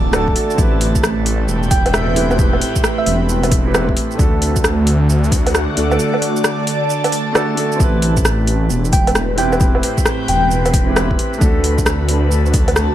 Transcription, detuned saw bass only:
Already playing: D1
0.58 A1
1.48 E1
1.71 E1
2.16 E1
3.07 E1
4.19 D2
5.09 D2
5.77 D2
7.80 A1
8.71 E1
8.93 E1
9.38 E1
10.28 E1
11.41 D2
12.32 D2

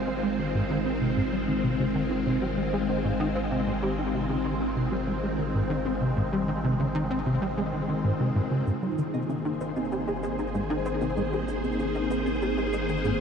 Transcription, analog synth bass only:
0.07 G#3
0.23 G#3
0.39 D#3
0.54 G#2
0.70 D#3
0.85 C4
1.01 C3
1.17 G#2
1.32 G3
1.48 D#3
1.64 C3
1.79 C#3
1.95 D#3
2.11 C4
2.26 C3
2.42 G3
2.58 G#3
2.73 G#3
2.89 D#3
3.04 G#2
3.20 D#3
3.35 C4
3.51 C3
3.67 G#2
3.82 G3
3.98 D#3
4.14 C3
4.29 C#3
4.45 D#3
4.61 C4
4.76 C3
4.92 G3
5.07 G#3
5.23 G#3
5.39 D#3
5.54 G#2
5.70 D#3
5.85 C4
6.01 C3
6.17 G#2
6.32 G3
6.48 D#3
6.64 C3
6.79 C#3
6.95 D#3
7.10 C4
7.26 C3
7.42 G3
7.57 G#3
7.73 D#3
7.89 D#3
8.04 G#2
8.20 C3
8.35 G#2
8.51 C#3
8.67 G#2
8.82 G3
8.98 D#3
9.14 C3
9.29 C#3
9.45 D#3
9.61 C4
9.76 C3
9.92 G3
10.08 G#3
10.23 G#3
10.39 D#3
10.54 G#2
10.70 D#3
10.86 C4
11.01 C3
11.17 G#2
11.32 G3
11.48 D#3
11.64 C3
11.79 C#3
11.95 D#3
12.11 C4
12.26 C3
12.42 G3
12.58 G#3
12.73 G#3
12.89 D#3
13.05 G#2

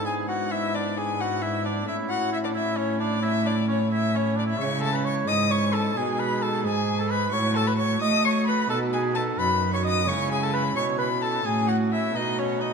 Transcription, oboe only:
0.05 G#4
0.29 F#4
0.52 E4
0.75 D4
0.97 G#4
1.21 F#4
1.42 E4
1.65 D4
1.87 E4
2.11 F#4
2.32 E4
2.44 D4
2.55 E4
2.77 C#4
3.00 D4
3.22 E4
3.45 D4
3.68 C#4
3.91 E4
4.14 C#4
4.36 D4
4.47 E4
4.57 C#5
4.80 A4
4.93 B4
5.05 C#5
5.28 D#5
5.51 C#5
5.73 A4
5.97 G#4
6.19 B4
6.43 A4
6.65 G#4
7.00 A4
7.11 B4
7.33 C#5
7.56 A4
7.68 B4
7.79 C#5
8.02 D#5
8.26 C#5
8.49 B4
8.70 A4
8.94 G#4
9.16 A4
9.38 B4
9.73 C#5
9.85 D#5
10.07 C#5
10.32 G#4
10.43 A4
10.53 B4
10.76 C#5
10.98 B4
11.23 A4
11.46 G#4
11.69 F#4
11.93 E4
12.15 D#4
12.39 C#4
12.61 D#4

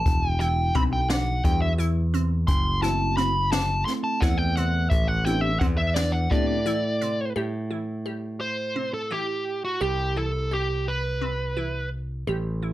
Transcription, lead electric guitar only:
Already playing: A5
0.31 G5
0.40 G5
0.76 B5
0.93 G5
1.10 F#5
1.45 G5
1.62 E5
2.47 C6
2.82 A5
3.17 B5
3.52 A5
3.85 C6
4.04 A5
4.20 F#5
4.38 G5
4.56 F#5
4.90 E5
5.08 F#5
5.25 G5
5.41 E5
5.60 F#5
5.77 E5
5.94 D5
6.12 F#5
6.31 D5
8.40 C5
8.94 A4
9.12 G4
9.65 F#4
9.81 G4
10.17 A4
10.53 G4
10.88 B4

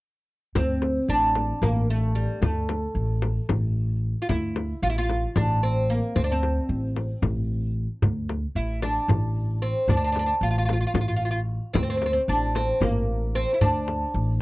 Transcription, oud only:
0.56 C4
1.10 D4
1.63 A#3
1.90 A3
2.15 G3
2.42 A3
4.22 F4
4.29 E4
4.83 F4
4.90 E4
4.98 F4
5.37 D4
5.63 C4
5.90 A#3
6.16 C4
6.24 D4
6.32 C4
8.56 E4
8.82 D4
9.62 C4
9.89 D4
9.97 D4
10.04 D4
10.12 D4
10.19 D4
10.26 D4
10.43 F4
10.51 F4
10.58 F4
10.65 F4
10.73 F4
10.81 F4
10.87 F4
10.95 F4
11.01 F4
11.08 F4
11.16 F4
11.25 F4
11.31 F4
11.74 C4
11.83 C4
11.90 C4
11.97 C4
12.06 C4
12.13 C4
12.29 D4
12.56 C4
12.83 A#3
13.35 C4
13.54 E4
13.61 D4

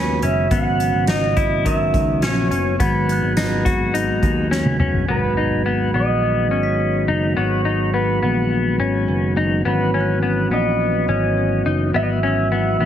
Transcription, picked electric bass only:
Already playing: D#2
0.23 F#1
0.51 G#1
0.94 G#1
1.94 C#2
2.23 A#1
2.51 F#1
2.80 G#1
3.23 G#1
4.23 D#2
4.80 F#1
5.08 G#1
5.94 A#1
6.51 G#1
7.08 F#1
7.37 G#1
8.23 A#1
8.80 G#1
9.08 F#1
9.36 F#1
9.65 G#1
10.51 A#1
11.08 G#1
11.65 F#1
11.94 G#1
12.80 A#1

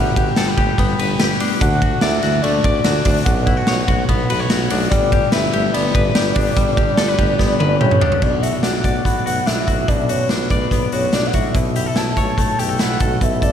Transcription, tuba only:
Already playing: G1
0.37 G1
0.58 G1
0.78 G1
0.99 G1
1.18 G1
1.61 D2
2.02 D2
2.23 D2
2.44 D2
2.64 D2
2.85 D2
3.06 D2
3.26 B1
3.68 B1
3.88 B1
4.09 B1
4.31 B1
4.51 B1
4.71 B1
4.92 G1
5.32 G1
5.54 G1
5.74 G1
5.95 G1
6.15 G1
6.36 G1
6.57 G1
6.98 G1
7.19 G1
7.40 G1
7.60 G1
7.81 G1
8.22 B1
8.64 B1
8.84 B1
9.05 B1
9.26 B1
9.47 B1
9.68 B1
9.88 B1
10.30 B1
10.50 B1
10.71 B1
10.92 B1
11.13 B1
11.34 B1
11.55 B1
11.96 B1
12.17 B1
12.38 B1
12.60 B1
12.80 B1
13.00 B1
13.21 B1

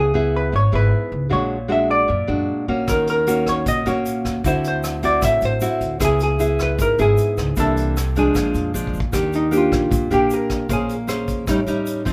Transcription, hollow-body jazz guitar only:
0.00 G#4
0.36 B4
0.56 C#5
0.75 B4
1.33 C#5
1.72 E5
1.91 D5
2.89 A#4
3.10 A#4
3.49 C#5
3.68 D#5
3.88 C#5
4.48 C5
4.68 C5
5.05 D5
5.25 E5
5.45 C5
6.05 G#4
6.23 G#4
6.63 B4
6.82 A#4
7.01 G#4
7.60 A4
8.19 G#4
9.36 D#4
9.57 F4
10.14 G4
10.34 A#4
10.73 G#4

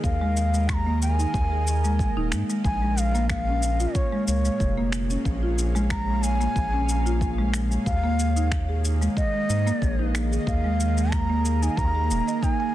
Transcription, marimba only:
0.21 G#3
0.54 G#3
0.86 A#3
1.19 D#4
1.52 G#4
1.84 G#3
2.17 D#4
2.32 G#3
2.50 G#3
2.82 G#3
3.15 A#3
3.47 C#4
3.80 F4
4.12 G#3
4.45 G#3
4.78 A#3
5.10 C#4
5.43 F4
5.75 G#3
6.08 G#3
6.40 A#3
6.73 C#4
7.06 F4
7.38 G#3
7.71 G#3
8.04 A#3
8.36 D#4
8.69 G#4
9.01 G#3
9.34 G#3
9.67 A#3
9.99 D#4
10.32 G#4
10.64 G#3
10.97 G#3
11.30 A#3
11.62 D#4
11.95 G#4
12.28 D#5
12.43 D#4
12.60 G#5

